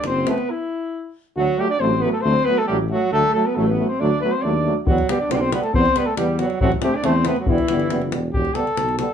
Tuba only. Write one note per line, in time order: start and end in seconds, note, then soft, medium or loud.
0.05 0.29 F#1 medium
1.36 1.48 D2 medium
1.81 2.05 A1 medium
2.25 2.37 D2 loud
2.69 2.93 A1 medium
3.12 3.24 D2 medium
3.57 3.81 A1 medium
4.01 4.13 D2 medium
4.44 4.68 D#2 medium
4.87 4.99 E2 medium
5.31 5.55 B1 medium
5.73 5.86 E2 loud
6.17 6.41 E2 medium
6.61 6.73 A1 medium
7.05 7.29 E2 medium
7.48 7.60 E1 medium
7.69 7.89 G1 medium
7.91 8.11 F#1 medium
8.13 8.33 E1 medium
8.34 8.47 E1 medium
8.77 9.02 B1 medium